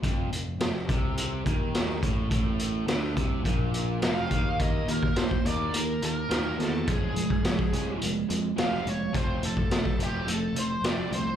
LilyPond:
<<
  \new Staff \with { instrumentName = "Lead electric guitar" } { \time 4/4 \key f \mixolydian \tempo 4 = 105 r1 | r2. f''4 | ees''8 bes'8 c''8 d''8 bes'8 bes'4 a'8 | aes'2 r4 f''8 des''8 |
c''8 a'4 g'8 a'8 c''8 d''8 c''8 | }
  \new Staff \with { instrumentName = "Distorted electric guitar" } { \clef bass \time 4/4 \key f \mixolydian f,8 f,8 f,8 c4 ees4 a,8 | a,4 d8 c8 bes,4 f,8 ees8 | <ees bes ees'>8 <ees bes>8 <ees bes>8 <ees bes ees'>8 <ees bes>8 <ees bes>8 <ees bes ees'>8 <ees bes>8 | <f aes des'>8 <f aes>8 <f aes>8 <f aes des'>8 <f aes>8 <f aes>8 <f aes des'>8 <f aes>8 |
<f a c'>8 <f a>8 <f a>8 <f a c'>8 <f a>8 <f a>8 <f a c'>8 <f a>8 | }
  \new Staff \with { instrumentName = "Picked electric bass" } { \clef bass \time 4/4 \key f \mixolydian f,,8 f,,8 f,,8 c,4 ees,4 a,,8 | a,,4 d,8 c,8 bes,,4 f,,8 ees,8 | ees,8 ees,8 ees,8 ees,8 ees,8 ees,8 ees,8 e,8 | f,,8 f,,8 f,,8 c,8 f,,8 f,8 f,,8 f,,8 |
f,,8 f,,8 f,,8 f,,8 f,,8 f,,8 f,,8 c,8 | }
  \new DrumStaff \with { instrumentName = "Drums" } \drummode { \time 4/4 <hh bd>8 hh8 <hh sn>8 <hh bd>8 hh8 <hh bd>8 <hh sn>8 <hh bd>8 | <hh bd>8 hh8 <hh sn>8 <hh bd>8 <hh bd>8 hh8 <hh sn>8 <hh bd>8 | <hh bd>8 hh16 bd16 <hh sn>16 bd16 hh8 hh8 hh8 <hh sn>8 <hh sn>8 | <hh bd>8 hh16 bd16 <hh sn>16 bd16 hh8 hh8 hh8 <hh sn>8 hh8 |
<hh bd>8 hh16 bd16 <hh sn>16 bd16 hh8 hh8 hh8 <hh sn>8 hh8 | }
>>